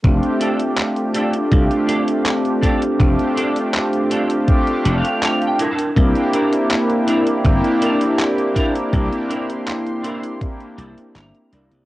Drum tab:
HH |xxxxxxxxxxxxxxxx|xxxxxxxxxxxxxxxx|xxxxxxxxxxxxxxxx|xxxxxxxxxxxxxxxx|
CP |----x-------x---|----x-------x---|----x-------x---|----x-------x---|
BD |o-------o-----o-|o-------o-------|o-------o-----o-|o-------o-------|